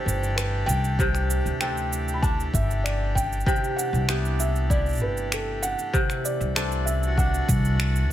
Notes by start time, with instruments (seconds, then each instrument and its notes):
Already playing: kora C3 E4 G4, accordion E3 A3 D4 G4
0.05 upright bass G1, felt piano C5, cabasa
0.23 cabasa
0.36 felt piano B4, finger snap, cabasa
0.66 upright bass C2, felt piano G5, cabasa
0.84 cabasa
0.99 kora C3, kick, cabasa
1.15 finger snap, cabasa
1.30 cabasa
1.46 upright bass D2, cabasa
1.60 kora C4 D4 A4, felt piano G5, finger snap, cabasa
1.77 cabasa
1.93 cabasa
2.08 cabasa
2.14 felt piano B5
2.22 kora D4, felt piano A5, kick, cabasa
2.40 cabasa
2.54 upright bass G1, felt piano E5, kick, cabasa
2.71 cabasa
2.84 felt piano D5, finger snap, cabasa
3.15 felt piano G5, kick, cabasa
3.32 cabasa
3.40 cabasa
3.46 kora C3, accordion E3, felt piano G5, kick, cabasa
3.56 cabasa
3.64 cabasa
3.76 felt piano F#5, cabasa
3.93 upright bass C2, cabasa
4.08 kora B3 E4 G4, finger snap, cabasa
4.25 cabasa
4.40 felt piano E5, cabasa
4.56 cabasa
4.70 kora E4, felt piano D5, kick, cabasa
4.86 cabasa
4.89 cabasa
4.91 cabasa
4.93 cabasa
4.95 cabasa
4.97 cabasa
4.99 upright bass G1, felt piano B4, cabasa
5.17 cabasa
5.32 felt piano A4, finger snap, cabasa
5.62 felt piano F#5, cabasa
5.79 cabasa
5.93 kora C3, kick, cabasa
6.02 accordion A3
6.10 finger snap, cabasa
6.25 felt piano D5, cabasa
6.41 upright bass C2, cabasa
6.55 kora C4 D4 A4, finger snap, cabasa
6.64 accordion D4
6.72 cabasa
6.86 felt piano E5, cabasa
7.03 accordion F#4, cabasa
7.17 kora D4, felt piano F#5, kick, cabasa
7.34 cabasa
7.49 upright bass C2, kick, cabasa
7.65 cabasa
7.80 finger snap, cabasa
7.96 cabasa